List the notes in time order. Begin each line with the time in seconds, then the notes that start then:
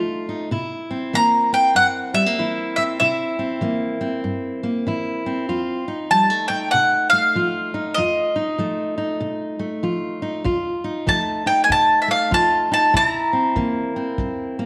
Already playing: F3 A3 D#4 F4
0.29 D#4
0.51 C3 E4
0.91 C4
1.13 E3 A#3 A#5
1.53 C4 G5
1.75 G2 F#5
2.14 G3 E5
2.26 A#3
2.39 E3 E4
2.76 C4 E5
3.00 C3 E4 E5
3.39 C4
3.61 E3 A#3
4.01 C4
4.24 G2
4.63 A#3
4.87 E3 E4
5.26 C4
5.49 F2 F4
5.88 D#4
6.11 F3 G3 A5
6.30 A3
6.48 D#4 G5
6.71 C3 F#5
7.10 A3 F5
7.35 F3 F4
7.74 D#4
7.94 F2 F4 D#5
8.36 D#4
8.58 F3 A3
8.98 D#4
9.20 C3
9.59 A3
9.83 F3 F4
10.22 D#4
10.44 F2 F4, kick
10.84 D#4
11.07 F3 A3 A5, kick
11.46 D#4 G5
11.64 G#5
11.69 C3 A5, kick
12.02 E5
12.08 A3 F5
12.31 F3 F4 A5, kick
12.72 D#4 A5
12.94 C3 E4 A#5, kick
13.33 C4
13.56 E3 A#3, kick
13.96 C4
14.18 G2, kick
14.59 A#3